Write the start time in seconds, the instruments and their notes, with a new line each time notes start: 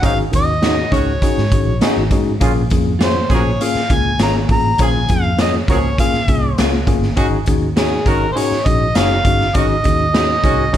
0.02 fingered electric bass G#1, horn section G#2 F#3 D#4, tine electric piano C#4 D#4 F#4 G#4, harmonica F5, kick, closed hi-hat
0.32 fingered electric bass D#2, tine electric piano C#4 D#4 F#4 A#4, kick, closed hi-hat
0.36 harmonica D#5
0.62 tine electric piano C#4 D#4 F#4 G#4, clean electric guitar D#4 F#4 C#5, snare, closed hi-hat
0.92 fingered electric bass C#2, horn section D#3 C#4 F#4, tine electric piano C#4 D#4 F#4 G#4, harmonica C#5, kick, closed hi-hat
1.22 tine electric piano C#4 D#4 F#4 G#4, kick, closed hi-hat
1.38 fingered electric bass G#2, snare
1.52 fingered electric bass G#1, tine electric piano C#4 D#4 F#4 G#4, kick, closed hi-hat
1.67 fingered electric bass A#1
1.81 tine electric piano C#4 D#4 F#4 G#4, clean electric guitar D#4 F#4 C#5, snare, closed hi-hat
1.97 fingered electric bass G#1
2.11 fingered electric bass G#2, tine electric piano C#4 D#4 F#4 G#4, kick, closed hi-hat
2.40 fingered electric bass A#1, horn section C#3 A#3 F4, tine electric piano A#3 C#4 F4 G#4, kick, closed hi-hat
2.70 fingered electric bass F2, tine electric piano A#3 C#4 F4 G#4, kick, closed hi-hat
2.99 tine electric piano A#3 C#4 F4 G#4, clean electric guitar F4 G#4 C#5, snare, closed hi-hat
3.04 harmonica C5
3.30 fingered electric bass A#1, horn section F3 C#4 G#4, tine electric piano A#3 C#4 F4 G#4, kick, closed hi-hat
3.34 harmonica F#4 A#4 C#5
3.61 tine electric piano A#3 C#4 F4 G#4, harmonica F5, closed hi-hat
3.75 muted fingered electric bass stroke, snare
3.90 fingered electric bass C#2, tine electric piano A#3 C#4 F4 G#4, harmonica G#5, kick, closed hi-hat
4.19 fingered electric bass G#1, tine electric piano A#3 C#4 F4 G#4, clean electric guitar F4 G#4 C#5, harmonica A#5, snare, closed hi-hat
4.49 fingered electric bass A1, tine electric piano A#3 C#4 F4 G#4, harmonica A#5, kick, open hi-hat
4.78 fingered electric bass A#1, horn section F3 C#4 G#4, tine electric piano A#3 C#4 F4 G#4, kick, closed hi-hat
4.83 harmonica G#5
5.09 fingered electric bass F2, tine electric piano A#3 C#4 F4 G#4, harmonica F5, kick, closed hi-hat
5.38 tine electric piano A#3 C#4 F4 G#4, clean electric guitar F4 G#4 C#5, harmonica D#5, snare, closed hi-hat
5.68 fingered electric bass C#2, horn section F3 C#4 G#4, tine electric piano A#3 C#4 F4 A#4, harmonica F#4 A#4 C#5, kick, closed hi-hat
5.98 tine electric piano A#3 C#4 F4 G#4, harmonica F5, kick, closed hi-hat
6.13 muted fingered electric bass stroke, snare
6.28 fingered electric bass C2, tine electric piano A#3 C#4 F4 G#4, kick, closed hi-hat
6.58 fingered electric bass C#2, tine electric piano A#3 C#4 F4 G#4, clean electric guitar F4 G#4 C#5, snare, closed hi-hat
6.87 fingered electric bass G1, tine electric piano A#3 C#4 F4 G#4, kick, closed hi-hat
7.03 snare
7.16 fingered electric bass G#1, horn section D#3 C#4 F#4, tine electric piano C#4 D#4 F#4 G#4, kick, closed hi-hat
7.46 fingered electric bass D#2, tine electric piano C#4 D#4 F#4 G#4, kick, closed hi-hat
7.76 tine electric piano C#4 D#4 F#4 G#4, clean electric guitar F#4 G#4 C#5, harmonica G#4, snare, closed hi-hat
8.06 fingered electric bass G#1, horn section D#3 C#4 F#4, tine electric piano C#4 D#4 F#4 G#4, harmonica A#4, kick, closed hi-hat
8.32 tine electric piano C#4 D#4 F#4, harmonica C5
8.37 tine electric piano G#4, harmonica C#5, closed hi-hat
8.51 muted fingered electric bass stroke, snare
8.66 fingered electric bass A#1, tine electric piano C#4 D#4 F#4 G#4, harmonica D#5, kick, closed hi-hat
8.95 fingered electric bass F#1, tine electric piano C#4 D#4 F#4 G#4, clean electric guitar F#4 G#4 C#5, harmonica F5, snare, closed hi-hat
9.25 fingered electric bass G1, tine electric piano C#4 D#4 F#4 G#4, kick, closed hi-hat
9.41 snare
9.54 fingered electric bass G#1, horn section D#3 C#4 F#4, tine electric piano C#4 D#4 F#4 G#4, harmonica D#5, kick, closed hi-hat
9.84 fingered electric bass D#2, tine electric piano C#4 D#4 F#4 G#4, kick, closed hi-hat
10.13 tine electric piano C#4 D#4 F#4 G#4, clean electric guitar F#4 G#4 C#5, snare, closed hi-hat
10.44 fingered electric bass C2, horn section D#3 C#4 F#4, tine electric piano C#4 D#4 F#4 G#4, kick, closed hi-hat
10.73 fingered electric bass A#1, tine electric piano C#4 D#4 F#4 G#4, kick